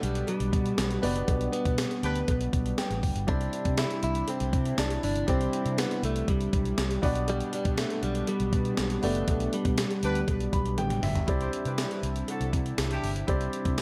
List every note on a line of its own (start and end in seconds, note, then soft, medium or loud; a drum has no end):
0.00 0.22 B1 medium
0.00 1.03 B2 medium
0.00 11.24 G3 medium
0.00 0.28 G3 medium
0.00 0.98 B3 medium
0.00 3.24 B3 medium
0.00 0.99 D4 medium
0.00 3.24 D4 medium
0.00 0.99 G4 medium
0.00 0.99 B4 medium
0.00 1.00 D5 medium
0.00 closed hi-hat medium
0.15 closed hi-hat medium
0.27 1.06 G3 medium
0.27 closed hi-hat medium
0.27 cowbell medium
0.40 0.50 B1 medium
0.40 closed hi-hat medium
0.53 0.72 B2 loud
0.53 kick loud
0.53 closed hi-hat medium
0.66 closed hi-hat soft
0.78 0.97 B1 medium
0.78 snare loud
0.78 closed hi-hat medium
0.78 tambourine medium
0.78 cowbell medium
0.91 closed hi-hat medium
1.02 1.22 F#1 medium
1.02 1.74 B2 medium
1.02 2.99 B3 medium
1.02 1.51 B3 loud
1.02 2.99 D4 medium
1.02 2.99 G4 medium
1.02 2.99 B4 medium
1.02 3.00 D5 medium
1.02 open hi-hat medium
1.16 closed hi-hat medium
1.28 1.47 B1 loud
1.28 kick loud
1.28 closed hi-hat medium
1.28 cowbell medium
1.41 closed hi-hat medium
1.53 2.99 B3 loud
1.53 closed hi-hat medium
1.65 1.84 B2 loud
1.65 kick medium
1.65 closed hi-hat medium
1.78 snare loud
1.78 closed hi-hat loud
1.78 tambourine medium
1.78 cowbell medium
1.91 closed hi-hat medium
2.03 2.22 D2 medium
2.03 2.19 D4 loud
2.03 2.19 G4 loud
2.03 2.19 B4 loud
2.03 closed hi-hat medium
2.16 closed hi-hat medium
2.28 2.47 B1 medium
2.28 kick loud
2.28 closed hi-hat medium
2.28 cowbell medium
2.41 closed hi-hat medium
2.53 2.72 B1 medium
2.53 kick loud
2.53 closed hi-hat medium
2.66 closed hi-hat soft
2.78 3.25 G5 medium
2.78 snare loud
2.78 closed hi-hat loud
2.78 tambourine medium
2.78 cowbell medium
2.90 3.00 A1 loud
2.90 closed hi-hat medium
3.03 3.12 F#1 medium
3.03 kick medium
3.03 open hi-hat medium
3.15 3.25 G1 medium
3.15 closed hi-hat medium
3.27 3.47 C2 loud
3.27 6.99 C3 medium
3.27 3.99 C3 medium
3.27 5.24 D4 medium
3.27 6.99 D4 medium
3.27 3.80 D4 loud
3.27 5.24 E4 medium
3.27 6.99 E4 medium
3.27 5.24 G4 medium
3.27 5.24 C5 medium
3.27 5.25 D5 medium
3.27 kick loud
3.27 closed hi-hat medium
3.27 cowbell medium
3.41 closed hi-hat medium
3.53 closed hi-hat medium
3.65 3.84 C3 loud
3.65 kick medium
3.65 closed hi-hat medium
3.77 4.03 E4 loud
3.77 snare loud
3.77 closed hi-hat medium
3.77 tambourine medium
3.77 cowbell medium
3.91 closed hi-hat medium
4.03 4.22 C2 medium
4.03 4.29 E4 loud
4.03 closed hi-hat medium
4.15 closed hi-hat medium
4.28 4.79 C4 loud
4.28 closed hi-hat medium
4.28 cowbell medium
4.40 4.50 C2 medium
4.40 closed hi-hat medium
4.53 4.72 C3 loud
4.53 kick loud
4.53 closed hi-hat medium
4.65 closed hi-hat soft
4.78 4.97 C2 loud
4.78 5.03 D4 loud
4.78 snare loud
4.78 closed hi-hat loud
4.78 tambourine medium
4.78 cowbell medium
4.90 closed hi-hat medium
5.03 5.22 G1 medium
5.03 5.29 D4 medium
5.03 open hi-hat medium
5.16 closed hi-hat medium
5.27 5.47 C2 loud
5.27 5.99 C3 medium
5.27 5.79 C4 loud
5.27 6.99 D4 medium
5.27 6.99 E4 medium
5.27 7.00 G4 medium
5.27 7.00 C5 medium
5.27 7.00 D5 medium
5.27 kick loud
5.27 closed hi-hat medium
5.27 cowbell medium
5.41 closed hi-hat soft
5.53 closed hi-hat medium
5.66 5.84 C3 loud
5.66 closed hi-hat medium
5.78 6.02 B3 medium
5.78 snare loud
5.78 closed hi-hat medium
5.78 tambourine medium
5.78 cowbell medium
5.91 closed hi-hat medium
6.03 6.22 C2 medium
6.03 6.30 A3 medium
6.03 closed hi-hat medium
6.16 closed hi-hat medium
6.28 6.47 C2 medium
6.28 7.00 G3 medium
6.28 kick loud
6.28 closed hi-hat medium
6.28 cowbell medium
6.41 closed hi-hat medium
6.53 6.72 B1 medium
6.53 kick loud
6.53 closed hi-hat medium
6.65 closed hi-hat soft
6.78 6.97 C2 medium
6.78 snare loud
6.78 closed hi-hat loud
6.78 tambourine medium
6.78 cowbell medium
6.91 closed hi-hat medium
7.02 7.41 B1 loud
7.02 7.74 B2 medium
7.02 8.99 B3 medium
7.02 11.24 B3 medium
7.02 11.24 D4 medium
7.02 8.99 D4 medium
7.02 8.99 G4 medium
7.02 8.99 B4 medium
7.02 9.00 D5 medium
7.02 kick loud
7.02 open hi-hat medium
7.16 closed hi-hat medium
7.28 7.53 G3 loud
7.28 closed hi-hat medium
7.28 cowbell medium
7.41 closed hi-hat medium
7.53 7.79 G3 medium
7.53 closed hi-hat medium
7.65 7.84 B2 loud
7.65 kick medium
7.65 closed hi-hat medium
7.78 8.03 A3 loud
7.78 snare loud
7.78 closed hi-hat medium
7.78 tambourine medium
7.78 cowbell medium
7.90 closed hi-hat medium
8.03 8.22 B1 medium
8.03 8.28 G3 loud
8.03 closed hi-hat medium
8.15 closed hi-hat medium
8.27 9.06 G3 loud
8.27 closed hi-hat medium
8.27 cowbell medium
8.40 8.50 B1 medium
8.40 closed hi-hat medium
8.53 8.72 B2 loud
8.53 kick loud
8.53 closed hi-hat medium
8.65 closed hi-hat soft
8.77 8.97 B1 loud
8.77 snare loud
8.77 closed hi-hat medium
8.77 tambourine medium
8.77 cowbell medium
8.90 closed hi-hat medium
9.02 9.22 F#1 medium
9.02 9.74 B2 medium
9.02 9.55 A3 loud
9.02 10.99 B3 medium
9.02 10.99 D4 medium
9.02 10.99 G4 medium
9.02 10.99 B4 medium
9.02 11.00 D5 medium
9.02 open hi-hat medium
9.15 closed hi-hat medium
9.28 9.47 B1 loud
9.28 kick loud
9.28 closed hi-hat medium
9.28 cowbell medium
9.40 closed hi-hat medium
9.53 10.99 G3 medium
9.53 closed hi-hat medium
9.65 9.84 B2 loud
9.65 kick medium
9.65 closed hi-hat medium
9.78 snare loud
9.78 closed hi-hat medium
9.78 tambourine medium
9.78 cowbell medium
9.91 closed hi-hat medium
10.03 10.22 D2 medium
10.03 10.19 D4 loud
10.03 10.19 G4 loud
10.03 10.19 B4 loud
10.03 closed hi-hat medium
10.15 closed hi-hat medium
10.28 10.47 B1 loud
10.28 kick loud
10.28 closed hi-hat medium
10.28 cowbell medium
10.40 closed hi-hat medium
10.53 10.78 B1 loud
10.53 10.76 B5 medium
10.53 kick medium
10.53 closed hi-hat medium
10.66 closed hi-hat soft
10.78 10.97 A1 medium
10.78 11.01 G5 medium
10.78 closed hi-hat loud
10.78 high tom medium
10.78 cowbell medium
10.90 closed hi-hat medium
10.90 mid tom medium
11.03 11.21 G1 medium
11.03 11.26 E5 medium
11.03 mid tom loud
11.03 open hi-hat medium
11.15 closed hi-hat medium
11.15 floor tom loud
11.27 11.47 C2 loud
11.27 13.82 C3 medium
11.27 11.99 C3 medium
11.27 13.82 G3 medium
11.27 13.82 D4 medium
11.27 13.24 E4 medium
11.27 13.82 E4 medium
11.27 13.24 G4 medium
11.27 13.24 C5 medium
11.27 13.25 D5 medium
11.27 kick loud
11.27 closed hi-hat medium
11.27 cowbell medium
11.40 11.50 E4 medium
11.40 11.50 G4 medium
11.40 11.50 C5 medium
11.40 closed hi-hat soft
11.53 closed hi-hat medium
11.65 11.84 C3 loud
11.65 12.01 E4 medium
11.65 12.01 G4 medium
11.65 12.01 B4 medium
11.65 closed hi-hat medium
11.78 snare loud
11.78 closed hi-hat medium
11.78 tambourine medium
11.78 cowbell medium
11.91 closed hi-hat medium
12.03 12.22 C2 medium
12.03 closed hi-hat medium
12.16 closed hi-hat medium
12.28 12.48 D4 medium
12.28 12.48 F#4 loud
12.28 12.48 A4 loud
12.28 closed hi-hat medium
12.28 cowbell medium
12.41 12.50 C2 medium
12.41 closed hi-hat medium
12.53 12.72 C3 loud
12.53 kick medium
12.53 closed hi-hat medium
12.66 closed hi-hat soft
12.78 12.97 C2 medium
12.78 snare loud
12.78 closed hi-hat medium
12.78 tambourine medium
12.78 cowbell medium
12.90 13.11 D4 medium
12.90 13.11 E4 medium
12.90 13.11 G4 loud
12.90 closed hi-hat medium
13.03 13.22 G1 medium
13.03 open hi-hat medium
13.16 closed hi-hat soft
13.27 13.47 C2 loud
13.27 13.82 C3 medium
13.27 13.82 E4 medium
13.27 13.82 G4 medium
13.27 13.82 C5 medium
13.27 13.82 D5 medium
13.27 kick loud
13.27 closed hi-hat medium
13.27 cowbell medium
13.41 closed hi-hat soft
13.53 closed hi-hat medium
13.65 13.82 C3 loud
13.65 kick medium
13.65 closed hi-hat medium
13.78 snare loud
13.78 closed hi-hat medium
13.78 tambourine medium
13.78 cowbell medium